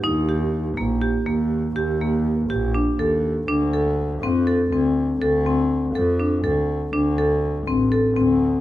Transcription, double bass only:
\new Staff \with { instrumentName = "Double bass" } { \clef bass \time 7/8 \key ees \lydian \tempo 4 = 122 ees,4. bes,,4 ees,4 | ees,4. bes,,4 ees,4 | d,4. f,4 d,4 | d,4. f,4 d,4 |
d,4. a,,4 d,4 | }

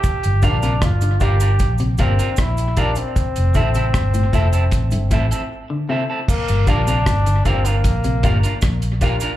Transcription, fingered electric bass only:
\new Staff \with { instrumentName = "Fingered electric bass" } { \clef bass \time 4/4 \key g \dorian \tempo 4 = 77 r16 g,,16 bes,,8 g,,8 g,,8 bes,,8 g,,16 r16 bes,,8. r16 | r16 f,,16 a,,8 g,,8 f,,8 a,,16 g,,16 a,,16 r4 r16 | r16 g,,16 bes,,8 g,,8 g,,8 bes,,8 g,,16 r16 bes,,8. r16 | }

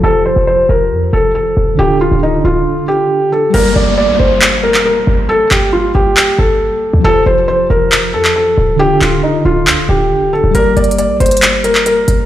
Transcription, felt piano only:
\new Staff \with { instrumentName = "Felt piano" } { \time 4/4 \key g \minor \tempo 4 = 137 a'8 c''8 c''8 bes'4 a'8 a'4 | g'8 f'8 ees'8 f'4 g'4 a'8 | bes'8 d''8 d''8 c''4 bes'8 bes'4 | a'8 g'8 f'8 g'4 a'4. |
a'8 c''8 c''8 bes'4 a'8 a'4 | g'8 f'8 ees'8 f'4 g'4 a'8 | bes'8 d''8 d''8 c''4 bes'8 bes'4 | }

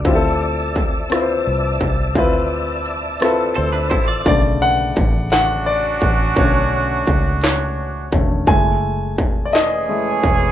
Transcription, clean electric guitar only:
\new Staff \with { instrumentName = "Clean electric guitar" } { \time 6/8 \key d \major \tempo 4. = 57 r2. | r2 <c' a'>16 <d' b'>16 <e' c''>16 <f' d''>16~ | <f' d''>16 r2 r8. | r2. |
r2. | }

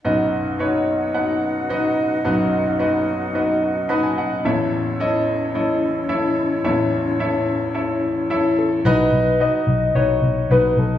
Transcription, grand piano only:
<<
  \new Staff \with { instrumentName = "Grand piano" } { \time 4/4 \key b \mixolydian \tempo 4 = 109 << { r1 | r2. b''16 gis''16 fis''8 | r1 | r1 |
r1 | } \\ { <dis' fis' b' dis''>8. r16 <dis' fis' b' cis''>8. r16 <dis' fis' b' fis''>8. r16 <dis' fis' b' dis''>8. r16 | <dis' fis' b' dis''>8. r16 <dis' fis' b' dis''>8. r16 <dis' fis' b' dis''>8. r16 <dis' fis' b' dis''>8. r16 | <e' a' cis'' e''>8. r16 <e' a' cis'' dis''>8. r16 <e' a' cis'' dis''>8. r16 <e' a' cis'' e''>8. r16 | <e' a' cis'' e''>8. r16 <e' a' cis'' e''>8. r16 <e' a' cis'' e''>8. r16 <e' a' cis'' e''>8. r16 |
<dis' fis' b' dis''>8. r16 <dis' fis' b' dis''>8. r16 <dis' fis' b' dis''>8. r16 <dis' fis' b' dis''>8. r16 | } >> }
  \new Staff \with { instrumentName = "Grand piano" } { \clef bass \time 4/4 \key b \mixolydian <b,, fis,>1 | <b,, fis,>1 | <a,, e,>1 | <a,, e,>1 |
r1 | }
>>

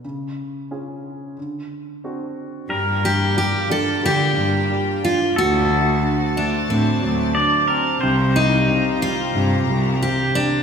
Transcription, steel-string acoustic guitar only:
\new Staff \with { instrumentName = "Steel-string acoustic guitar" } { \time 4/4 \key d \lydian \tempo 4 = 90 r1 | \key g \minor r8 g'8 g'8 a'8 g'4. f'8 | fis'4. d'8 c'4 r4 | r8 ees'4 f'4. g'8 d'8 | }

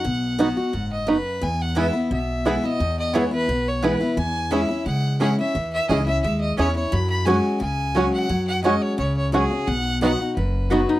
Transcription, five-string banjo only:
\new Staff \with { instrumentName = "Five-string banjo" } { \time 4/4 \key b \major \tempo 4 = 174 r4 <b dis' fis'>8 r4. <b dis' fis'>8 r8 | r4 <b e' gis'>8 r4. <b e' gis'>8 r8 | r4 <b e' gis'>8 r4. <b e' gis'>8 r8 | r4 <cis' e' gis'>8 r4. <cis' e' gis'>8 r8 |
r4 <cis' e' gis'>8 r4. <cis' e' gis'>8 r8 | r4 <cis' fis'>8 r4. <cis' fis'>8 r8 | r4 <cis' fis'>8 r4. <cis' fis'>8 r8 | r4 <b dis' fis'>8 r4. <b dis' fis'>8 r8 | }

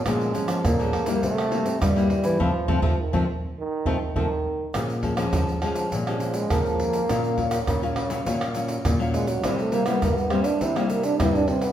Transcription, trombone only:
\new Staff \with { instrumentName = "Trombone" } { \time 4/4 \key bes \minor \tempo 4 = 102 aes4 bes4 a4 g4 | f4 ees8 r8 ees4 ees4 | r2 r16 c16 f16 aes16 bes4~ | bes2 r4. aes16 ges16 |
g16 a16 bes16 ces'16 bes16 ces'16 c'16 d'16 e'16 g16 bes16 d'16 e'16 d'16 c'16 ces'16 | }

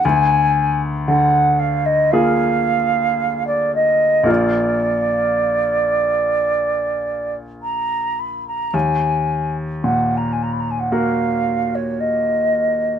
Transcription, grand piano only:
\new Staff \with { instrumentName = "Grand piano" } { \time 4/4 \key bes \phrygian \tempo 4 = 55 d,4 d4 <bes f' aes'>2 | <bes,, bes f' bes'>1 | ees,4 bes,4 <bes ges' bes'>2 | }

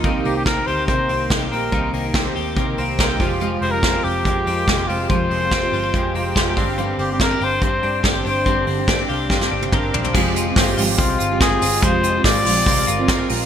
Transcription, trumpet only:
\new Staff \with { instrumentName = "Trumpet" } { \time 4/4 \key f \dorian \tempo 4 = 143 r8 g'16 g'16 bes'8 c''8 c''4 r8 bes'8~ | bes'8 r2. r8 | r8 c''16 bes'8. g'2 f'8 | c''2.~ c''8 r8 |
r8 g'16 g'16 bes'8 c''8 c''4 r8 c''8~ | c''8 r2. r8 | r2 f'4 aes'4 | c''4 d''2~ d''8 r8 | }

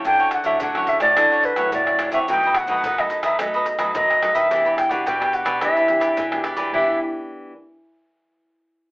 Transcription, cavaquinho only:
\new Staff \with { instrumentName = "Cavaquinho" } { \time 4/4 \key e \minor \tempo 4 = 108 <d' a' cis'' fis''>16 <a' cis'' fis''>16 r16 <a' cis'' fis''>16 <d' a' cis'' fis''>16 <a' cis'' fis''>8 <a' cis'' fis''>16 <d' a' cis'' fis''>16 <a' cis'' fis''>16 r16 <a' cis'' fis''>8. <d' a' cis'' fis''>16 <a' cis'' fis''>16 | <dis' a' b' dis''>16 <a' b' dis''>16 r16 <a' b' dis''>16 <dis' a' b' dis''>16 <a' b' dis''>8 <a' b' dis''>16 <dis' a' b' dis''>16 <a' b' dis''>16 r16 <a' b' dis''>8. <dis' a' b' dis''>16 <a' b' dis''>16 | <e' g' b' d''>16 <g' b' d''>16 r16 <g' b' d''>16 <e' g' b' d''>16 <g' b' d''>8 <g' b' d''>16 <e' g' b' d''>16 <g' b' d''>16 r16 <g' b' d''>8. <e' g' b' d''>16 <g' b' d''>16 | <e' g' b' d''>8 r2. r8 | }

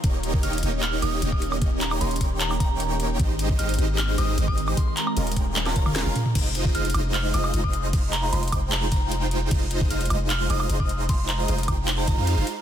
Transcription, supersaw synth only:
\new Staff \with { instrumentName = "Supersaw synth" } { \time 4/4 \key f \minor \tempo 4 = 152 <bes ees' g' des'' ees''>4 <bes ees' g' des'' ees''>16 r16 <bes ees' g' des'' ees''>4 <bes ees' g' des'' ees''>8 <bes ees' g' des'' ees''>4~ | <bes ees' g' des'' ees''>4 <bes ees' g' des'' ees''>16 r16 <bes ees' g' des'' g''>2~ <bes ees' g' des'' g''>8 | <aes ees' g' c'' ees''>4 <aes ees' g' c'' ees''>16 r16 <aes ees' g' c'' ees''>4 <aes ees' g' c'' ees''>8 <aes ees' g' c'' ees''>4 | r4 <aes des' f' bes' ees''>16 r16 <aes des' f' bes' g''>4 <aes des' f' bes' des''>16 <aes des' f' bes' f''>8 <aes des' f' bes' f''>16 r8 |
<aes ees' f' c'' ees''>4 <aes ees' f' c'' ees''>16 r16 <aes ees' f' c'' ees''>4 <aes ees' f' c'' ees''>8 <aes ees' f' c'' ees''>4~ | <aes ees' f' c'' ees''>4 <aes ees' f' c'' ees''>16 r16 <aes ees' f' c'' g''>2~ <aes ees' f' c'' g''>8 | <aes ees' f' c'' ees''>4 <aes ees' f' c'' ees''>16 r16 <aes ees' f' c'' ees''>4 <aes ees' f' c'' ees''>8 <aes ees' f' c'' ees''>4~ | <aes ees' f' c'' ees''>4 <aes ees' f' c'' ees''>16 r16 <aes ees' f' c'' g''>4 <aes ees' f' c'' ees''>16 <aes ees' f' c'' f''>8 <aes ees' f' c'' f''>16 r8 | }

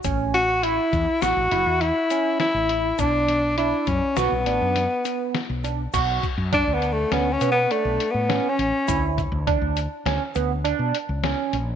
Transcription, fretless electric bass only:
\new Staff \with { instrumentName = "Fretless electric bass" } { \clef bass \time 5/4 \key b \minor \tempo 4 = 102 a,,4. e,16 r16 a,,16 a,,16 fis,,16 e,8 r4 a,,8. | b,,4. fis,16 r16 b,,16 b,,16 a,,16 fis,8 r4 b,,8. | b,,8 r16 fis,8 d,8. d,8 b,8 r16 b,,16 r16 a,8 r16 a,,16 r16 | d,8. d,8 d,8 r16 d,16 r16 d,8. b,16 r16 cis,8 r16 ais,,8 | }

